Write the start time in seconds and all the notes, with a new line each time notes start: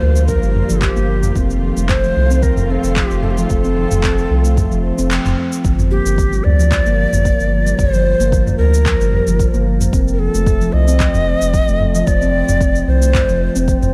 Already playing: D3 G3 A#3 F4 C5
0.02 D2 A#3
0.16 shaker
0.27 F3 A#4, kick, shaker
0.43 G1 G3, shaker
0.55 mid tom
0.69 G1 F3, shaker
0.81 G4, kick, clap, shaker
0.96 G1 A#3, shaker
1.09 F3
1.23 mid tom, shaker
1.36 F1 D#3 A3 C4 F4, kick, shaker
1.50 shaker
1.63 F3
1.76 F1 A3, shaker
1.89 C5, kick, clap, mid tom, shaker
2.04 F3, shaker
2.16 C2
2.31 C4, shaker
2.43 F3 A#4, kick, shaker
2.57 F1, mid tom, shaker
2.70 C4 A4
2.84 F1, shaker
2.96 F3 G4, kick, clap, shaker
3.11 F1 A3, shaker
3.23 A4, mid tom
3.31 G4
3.38 F3 A4, shaker
3.50 F1, kick, shaker
3.64 C4, shaker
3.77 F3
3.91 F1, mid tom, shaker
4.04 C4, kick, clap, shaker
4.18 shaker
4.31 C2 F3
4.45 A3, shaker
4.57 kick, mid tom, shaker
4.71 F1 F3, shaker
4.98 F1 C4, shaker
5.11 F3, clap, shaker
5.25 F1, mid tom, shaker
5.38 C4
5.52 shaker
5.65 G1 F3, kick, shaker
5.79 mid tom, shaker
5.91 A#3 G4
6.06 G1, shaker
6.18 kick, shaker
6.33 G3, shaker
6.44 D2 D5, mid tom
6.59 F3, shaker
6.72 kick, clap, shaker
6.86 G1 A#3, shaker
6.99 F3
7.13 G1, mid tom, shaker
7.25 A#3, kick, shaker
7.39 G1, shaker
7.52 F3
7.66 G3, shaker
7.78 G1 C5, kick, mid tom, shaker
7.93 F3, shaker
8.20 G1 A#3, shaker
8.32 F3, kick, shaker
8.47 mid tom, shaker
8.58 D2 A#3 A#4
8.74 shaker
8.86 F3, kick, clap, shaker
9.01 G1 G3, shaker
9.13 mid tom
9.27 G1 F3, shaker
9.39 kick, shaker
9.54 G1 A#3, shaker
9.67 F3
9.81 mid tom, shaker
9.93 F1 C4, kick, shaker
10.08 shaker
10.13 A#4
10.19 F3 A4
10.34 F1 A3, shaker
10.47 kick, mid tom, shaker
10.61 F3, shaker
10.73 C2 D#5
10.88 C4, shaker
11.00 F3, kick, clap, shaker
11.14 F1, mid tom, shaker
11.27 C4
11.41 F1, shaker
11.54 F3, kick, shaker
11.68 F1 A3, shaker
11.81 mid tom
11.95 F3, shaker
12.07 F1 D5, kick, shaker
12.22 C4, shaker
12.34 F3
12.49 F1, mid tom, shaker
12.61 C4, kick, shaker
12.75 shaker
12.88 C2 F3 C5
13.02 A3, shaker
13.14 kick, clap, mid tom, shaker
13.29 F1 F3, shaker
13.56 F1 C4, shaker
13.68 F3, kick, shaker
13.82 F1, mid tom, shaker